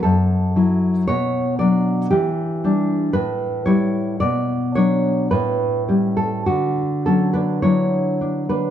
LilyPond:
\new Staff \with { instrumentName = "Nylon-string guitar" } { \time 2/4 \key d \major \tempo 4 = 56 << { a'4 cis''8 d''8 | g'4 b'8 cis''8 | d''8 cis''8 b'8. a'16 | fis'8 <cis' a'>16 <d' b'>16 <e' cis''>8. <d' b'>16 | } \\ { fis,8 <fis e'>8 b,8 <fis d'>8 | e8 <g d'>8 a,8 <g e'>8 | b,8 <fis d'>8 a,8 <g cis'>8 | d8 fis8 <fis d'>8 d'8 | } >> }